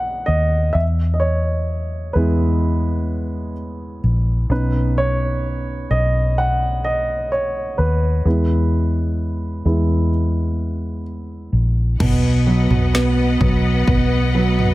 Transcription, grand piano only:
0, 0, Header, 1, 2, 480
1, 0, Start_track
1, 0, Key_signature, 5, "major"
1, 0, Tempo, 937500
1, 388, Time_signature, 4, 2, 24, 8
1, 7547, End_track
2, 0, Start_track
2, 0, Title_t, "Grand piano"
2, 0, Program_c, 0, 0
2, 0, Control_c, 0, 64, 127
2, 0, Note_on_c, 0, 75, 64
2, 0, Note_on_c, 0, 78, 72
2, 121, Note_off_c, 0, 78, 0
2, 133, Note_off_c, 0, 75, 0
2, 133, Note_on_c, 0, 75, 74
2, 372, Note_on_c, 0, 76, 72
2, 388, Note_off_c, 0, 75, 0
2, 393, Control_c, 0, 64, 0
2, 420, Note_off_c, 0, 76, 0
2, 497, Control_c, 0, 64, 127
2, 582, Note_on_c, 0, 75, 51
2, 613, Note_on_c, 0, 73, 74
2, 623, Note_off_c, 0, 75, 0
2, 1092, Note_on_c, 0, 71, 63
2, 1103, Note_on_c, 0, 56, 48
2, 1107, Note_on_c, 0, 59, 43
2, 1108, Note_on_c, 0, 64, 45
2, 1115, Note_off_c, 0, 73, 0
2, 1805, Note_off_c, 0, 56, 0
2, 1807, Note_off_c, 0, 59, 0
2, 1807, Note_off_c, 0, 64, 0
2, 2039, Note_off_c, 0, 71, 0
2, 2307, Note_on_c, 0, 59, 42
2, 2308, Note_on_c, 0, 61, 38
2, 2312, Note_on_c, 0, 63, 46
2, 2312, Note_on_c, 0, 71, 65
2, 2314, Control_c, 0, 64, 0
2, 2397, Control_c, 0, 64, 127
2, 2549, Note_on_c, 0, 73, 82
2, 2557, Note_off_c, 0, 71, 0
2, 3008, Note_off_c, 0, 73, 0
2, 3024, Note_on_c, 0, 75, 74
2, 3267, Note_on_c, 0, 78, 77
2, 3273, Note_off_c, 0, 75, 0
2, 3505, Note_on_c, 0, 75, 74
2, 3515, Note_off_c, 0, 78, 0
2, 3729, Note_off_c, 0, 75, 0
2, 3747, Note_on_c, 0, 73, 66
2, 3983, Note_on_c, 0, 71, 67
2, 3995, Note_off_c, 0, 73, 0
2, 4207, Note_off_c, 0, 59, 0
2, 4208, Note_off_c, 0, 61, 0
2, 4209, Note_off_c, 0, 63, 0
2, 4226, Note_on_c, 0, 56, 41
2, 4228, Note_on_c, 0, 59, 36
2, 4232, Note_on_c, 0, 64, 41
2, 4233, Control_c, 0, 64, 0
2, 4311, Control_c, 0, 64, 127
2, 4935, Note_off_c, 0, 56, 0
2, 4937, Note_off_c, 0, 59, 0
2, 4939, Note_off_c, 0, 64, 0
2, 4943, Note_on_c, 0, 56, 39
2, 4944, Note_on_c, 0, 59, 33
2, 4947, Note_on_c, 0, 64, 43
2, 5165, Note_off_c, 0, 56, 0
2, 5166, Note_off_c, 0, 59, 0
2, 5167, Note_off_c, 0, 64, 0
2, 5645, Note_off_c, 0, 71, 0
2, 6146, Note_on_c, 0, 47, 63
2, 6155, Control_c, 0, 64, 0
2, 6249, Control_c, 0, 64, 127
2, 6382, Note_on_c, 0, 54, 51
2, 6622, Note_on_c, 0, 59, 55
2, 6856, Note_off_c, 0, 54, 0
2, 6864, Note_on_c, 0, 54, 53
2, 7097, Note_off_c, 0, 59, 0
2, 7105, Note_on_c, 0, 59, 56
2, 7337, Note_off_c, 0, 54, 0
2, 7345, Note_on_c, 0, 54, 55
2, 7547, Note_off_c, 0, 47, 0
2, 7547, Note_off_c, 0, 54, 0
2, 7547, Note_off_c, 0, 59, 0
2, 7547, End_track
0, 0, End_of_file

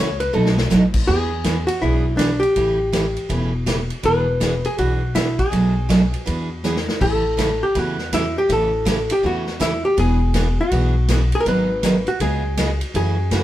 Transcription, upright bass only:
0, 0, Header, 1, 2, 480
1, 0, Start_track
1, 0, Tempo, 370599
1, 1400, Time_signature, 4, 2, 24, 8
1, 17401, End_track
2, 0, Start_track
2, 0, Title_t, "Upright bass"
2, 0, Program_c, 0, 32
2, 0, Note_on_c, 0, 37, 95
2, 426, Note_off_c, 0, 37, 0
2, 446, Note_on_c, 0, 35, 96
2, 908, Note_off_c, 0, 35, 0
2, 925, Note_on_c, 0, 33, 97
2, 1388, Note_off_c, 0, 33, 0
2, 1399, Note_on_c, 0, 40, 96
2, 2166, Note_off_c, 0, 40, 0
2, 2363, Note_on_c, 0, 35, 94
2, 3129, Note_off_c, 0, 35, 0
2, 3316, Note_on_c, 0, 33, 87
2, 4085, Note_off_c, 0, 33, 0
2, 4270, Note_on_c, 0, 28, 86
2, 5042, Note_off_c, 0, 28, 0
2, 5233, Note_on_c, 0, 28, 80
2, 6004, Note_off_c, 0, 28, 0
2, 6197, Note_on_c, 0, 35, 78
2, 6967, Note_off_c, 0, 35, 0
2, 7161, Note_on_c, 0, 35, 86
2, 7930, Note_off_c, 0, 35, 0
2, 8123, Note_on_c, 0, 40, 83
2, 8892, Note_off_c, 0, 40, 0
2, 9084, Note_on_c, 0, 33, 97
2, 9853, Note_off_c, 0, 33, 0
2, 10042, Note_on_c, 0, 40, 84
2, 10811, Note_off_c, 0, 40, 0
2, 11000, Note_on_c, 0, 33, 92
2, 11770, Note_off_c, 0, 33, 0
2, 11961, Note_on_c, 0, 40, 78
2, 12731, Note_off_c, 0, 40, 0
2, 12922, Note_on_c, 0, 28, 89
2, 13691, Note_off_c, 0, 28, 0
2, 13881, Note_on_c, 0, 35, 97
2, 14650, Note_off_c, 0, 35, 0
2, 14837, Note_on_c, 0, 32, 91
2, 15608, Note_off_c, 0, 32, 0
2, 15804, Note_on_c, 0, 37, 91
2, 16571, Note_off_c, 0, 37, 0
2, 16764, Note_on_c, 0, 42, 91
2, 17401, Note_off_c, 0, 42, 0
2, 17401, End_track
0, 0, End_of_file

